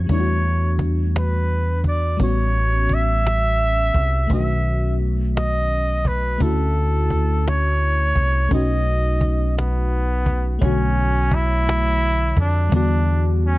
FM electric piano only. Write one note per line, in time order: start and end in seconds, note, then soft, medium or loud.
0.00 0.11 E4 medium
0.07 2.14 G3 medium
0.07 2.15 A3 medium
0.11 2.16 D4 medium
0.11 0.17 E4 medium
0.20 2.21 F#4 medium
2.17 4.24 G3 medium
2.17 4.26 B3 medium
2.21 4.27 C#4 medium
2.21 4.28 F#4 medium
4.27 6.35 A3 medium
4.27 6.36 C#4 medium
4.32 4.37 D4 soft
4.32 6.38 F#4 medium
4.38 6.40 D#3 medium
6.38 8.46 A3 medium
6.38 8.47 C#4 medium
6.42 8.48 E4 medium
6.42 8.49 F#4 medium
8.49 10.56 A3 medium
8.49 10.57 C#4 medium
8.53 10.58 D#4 medium
8.53 10.59 F#4 medium
10.59 12.67 A3 medium
10.59 12.68 C#5 medium
10.63 12.69 D3 medium
10.63 12.70 F#4 medium
12.69 13.58 G3 medium
12.69 13.58 B3 medium
12.74 13.58 D3 medium
12.74 13.58 F#4 medium